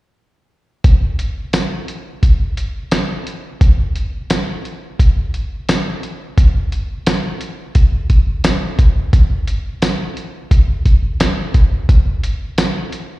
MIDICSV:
0, 0, Header, 1, 2, 480
1, 0, Start_track
1, 0, Tempo, 690449
1, 587, Time_signature, 4, 2, 24, 8
1, 9172, End_track
2, 0, Start_track
2, 0, Title_t, "Drums"
2, 586, Note_on_c, 9, 42, 74
2, 587, Note_on_c, 9, 36, 103
2, 655, Note_off_c, 9, 42, 0
2, 656, Note_off_c, 9, 36, 0
2, 827, Note_on_c, 9, 42, 59
2, 896, Note_off_c, 9, 42, 0
2, 1065, Note_on_c, 9, 42, 72
2, 1065, Note_on_c, 9, 54, 93
2, 1068, Note_on_c, 9, 38, 89
2, 1134, Note_off_c, 9, 42, 0
2, 1134, Note_off_c, 9, 54, 0
2, 1138, Note_off_c, 9, 38, 0
2, 1309, Note_on_c, 9, 42, 58
2, 1378, Note_off_c, 9, 42, 0
2, 1548, Note_on_c, 9, 36, 76
2, 1549, Note_on_c, 9, 42, 81
2, 1618, Note_off_c, 9, 36, 0
2, 1618, Note_off_c, 9, 42, 0
2, 1789, Note_on_c, 9, 42, 58
2, 1858, Note_off_c, 9, 42, 0
2, 2026, Note_on_c, 9, 42, 75
2, 2026, Note_on_c, 9, 54, 95
2, 2030, Note_on_c, 9, 38, 97
2, 2096, Note_off_c, 9, 42, 0
2, 2096, Note_off_c, 9, 54, 0
2, 2099, Note_off_c, 9, 38, 0
2, 2271, Note_on_c, 9, 42, 64
2, 2341, Note_off_c, 9, 42, 0
2, 2510, Note_on_c, 9, 36, 112
2, 2510, Note_on_c, 9, 42, 71
2, 2579, Note_off_c, 9, 36, 0
2, 2579, Note_off_c, 9, 42, 0
2, 2750, Note_on_c, 9, 42, 54
2, 2819, Note_off_c, 9, 42, 0
2, 2989, Note_on_c, 9, 42, 69
2, 2989, Note_on_c, 9, 54, 99
2, 2993, Note_on_c, 9, 38, 92
2, 3059, Note_off_c, 9, 42, 0
2, 3059, Note_off_c, 9, 54, 0
2, 3062, Note_off_c, 9, 38, 0
2, 3234, Note_on_c, 9, 42, 48
2, 3303, Note_off_c, 9, 42, 0
2, 3472, Note_on_c, 9, 36, 78
2, 3474, Note_on_c, 9, 42, 74
2, 3542, Note_off_c, 9, 36, 0
2, 3544, Note_off_c, 9, 42, 0
2, 3712, Note_on_c, 9, 42, 53
2, 3782, Note_off_c, 9, 42, 0
2, 3953, Note_on_c, 9, 42, 71
2, 3953, Note_on_c, 9, 54, 105
2, 3957, Note_on_c, 9, 38, 101
2, 4023, Note_off_c, 9, 42, 0
2, 4023, Note_off_c, 9, 54, 0
2, 4026, Note_off_c, 9, 38, 0
2, 4193, Note_on_c, 9, 42, 56
2, 4263, Note_off_c, 9, 42, 0
2, 4432, Note_on_c, 9, 36, 109
2, 4433, Note_on_c, 9, 42, 84
2, 4502, Note_off_c, 9, 36, 0
2, 4502, Note_off_c, 9, 42, 0
2, 4673, Note_on_c, 9, 42, 61
2, 4743, Note_off_c, 9, 42, 0
2, 4912, Note_on_c, 9, 42, 76
2, 4912, Note_on_c, 9, 54, 99
2, 4915, Note_on_c, 9, 38, 104
2, 4981, Note_off_c, 9, 42, 0
2, 4981, Note_off_c, 9, 54, 0
2, 4985, Note_off_c, 9, 38, 0
2, 5149, Note_on_c, 9, 42, 56
2, 5218, Note_off_c, 9, 42, 0
2, 5387, Note_on_c, 9, 42, 92
2, 5390, Note_on_c, 9, 36, 80
2, 5457, Note_off_c, 9, 42, 0
2, 5460, Note_off_c, 9, 36, 0
2, 5628, Note_on_c, 9, 42, 60
2, 5630, Note_on_c, 9, 36, 73
2, 5698, Note_off_c, 9, 42, 0
2, 5699, Note_off_c, 9, 36, 0
2, 5868, Note_on_c, 9, 42, 83
2, 5868, Note_on_c, 9, 54, 107
2, 5871, Note_on_c, 9, 38, 112
2, 5937, Note_off_c, 9, 42, 0
2, 5937, Note_off_c, 9, 54, 0
2, 5941, Note_off_c, 9, 38, 0
2, 6108, Note_on_c, 9, 42, 61
2, 6109, Note_on_c, 9, 36, 83
2, 6178, Note_off_c, 9, 42, 0
2, 6179, Note_off_c, 9, 36, 0
2, 6348, Note_on_c, 9, 36, 117
2, 6348, Note_on_c, 9, 42, 86
2, 6417, Note_off_c, 9, 36, 0
2, 6417, Note_off_c, 9, 42, 0
2, 6587, Note_on_c, 9, 42, 62
2, 6656, Note_off_c, 9, 42, 0
2, 6827, Note_on_c, 9, 42, 81
2, 6827, Note_on_c, 9, 54, 103
2, 6830, Note_on_c, 9, 38, 99
2, 6896, Note_off_c, 9, 42, 0
2, 6896, Note_off_c, 9, 54, 0
2, 6900, Note_off_c, 9, 38, 0
2, 7069, Note_on_c, 9, 42, 51
2, 7139, Note_off_c, 9, 42, 0
2, 7307, Note_on_c, 9, 36, 83
2, 7309, Note_on_c, 9, 42, 79
2, 7377, Note_off_c, 9, 36, 0
2, 7378, Note_off_c, 9, 42, 0
2, 7547, Note_on_c, 9, 36, 74
2, 7547, Note_on_c, 9, 42, 60
2, 7616, Note_off_c, 9, 36, 0
2, 7616, Note_off_c, 9, 42, 0
2, 7787, Note_on_c, 9, 42, 73
2, 7787, Note_on_c, 9, 54, 103
2, 7791, Note_on_c, 9, 38, 104
2, 7857, Note_off_c, 9, 42, 0
2, 7857, Note_off_c, 9, 54, 0
2, 7860, Note_off_c, 9, 38, 0
2, 8025, Note_on_c, 9, 42, 59
2, 8026, Note_on_c, 9, 36, 78
2, 8094, Note_off_c, 9, 42, 0
2, 8095, Note_off_c, 9, 36, 0
2, 8266, Note_on_c, 9, 36, 111
2, 8266, Note_on_c, 9, 42, 83
2, 8335, Note_off_c, 9, 36, 0
2, 8336, Note_off_c, 9, 42, 0
2, 8506, Note_on_c, 9, 42, 67
2, 8575, Note_off_c, 9, 42, 0
2, 8744, Note_on_c, 9, 42, 82
2, 8744, Note_on_c, 9, 54, 103
2, 8747, Note_on_c, 9, 38, 105
2, 8813, Note_off_c, 9, 42, 0
2, 8813, Note_off_c, 9, 54, 0
2, 8817, Note_off_c, 9, 38, 0
2, 8985, Note_on_c, 9, 42, 56
2, 9055, Note_off_c, 9, 42, 0
2, 9172, End_track
0, 0, End_of_file